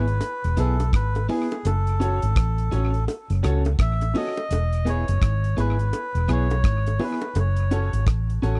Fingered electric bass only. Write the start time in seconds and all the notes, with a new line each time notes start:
Already playing: G#1
0.44 E1
0.58 B1
0.93 G#1
1.65 F#1
2.23 G#1
2.36 A1
2.73 A1
3.30 F#1
3.44 C#2
3.79 A1
4.51 E1
5.09 F#1
5.22 G#1
5.58 G#1
6.15 E1
6.29 B1
6.64 G#1
7.35 F#1
7.93 G#1
8.07 A1
8.43 A1